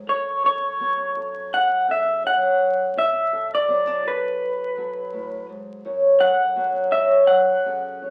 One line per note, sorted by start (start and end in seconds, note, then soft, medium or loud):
0.07 2.96 F#2 medium
0.07 0.44 A4 medium
0.07 0.45 C#5 medium
0.44 1.16 A4 soft
0.44 1.54 C#5 medium
0.80 3.68 F#3 soft
0.80 3.67 B3 soft
1.17 1.88 A4 soft
1.54 1.87 F#5 loud
1.88 2.96 C#3 soft
1.88 2.99 A4 soft
1.88 2.26 E5 medium
2.24 2.92 C#5 soft
2.24 2.94 F#5 medium
2.96 5.12 B2 medium
2.96 5.80 D5 medium
2.96 3.53 E5 medium
3.33 4.05 A4 soft
3.55 4.08 D5 medium
3.68 4.77 F#3 medium
3.68 3.87 B3 soft
3.87 5.84 D4 soft
4.05 4.77 A4 soft
4.05 5.46 B4 medium
4.77 6.56 F#3 soft
4.77 6.20 A4 soft
5.13 5.48 A2 soft
5.49 5.84 G#2 medium
5.85 8.10 F#2 medium
5.85 6.91 C#5 medium
6.20 7.66 A4 soft
6.20 6.92 F#5 medium
6.56 8.10 F#3 medium
6.56 8.10 B3 soft
6.92 8.00 C#5 medium
6.92 7.27 E5 medium
7.27 8.10 F#5 loud
7.66 8.10 C#3 soft
7.66 8.10 A4 soft
8.02 8.10 C#5 soft